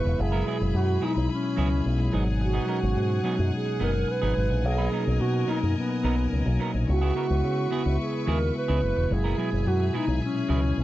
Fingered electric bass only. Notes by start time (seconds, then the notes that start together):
0.05 E1
0.19 F#1
0.61 F#1
0.74 F#2
1.16 B1
1.58 C#2
1.86 B1
2.14 G#1
2.83 G#1
2.97 G#2
3.39 F#2
3.81 F#1
4.23 G#1
4.37 G#1
4.51 A#1
4.65 B1
5.07 B1
5.21 B2
5.63 F#2
6.04 B1
6.32 C#2
6.46 B1
6.74 A#1
6.89 C#2
7.30 C#2
7.44 C#3
7.86 C#2
8.28 D#2
8.69 C#2
8.83 F#1
8.97 E1
9.11 F#1
9.53 F#1
9.66 F#2
10.08 B1
10.49 C#2
10.78 B1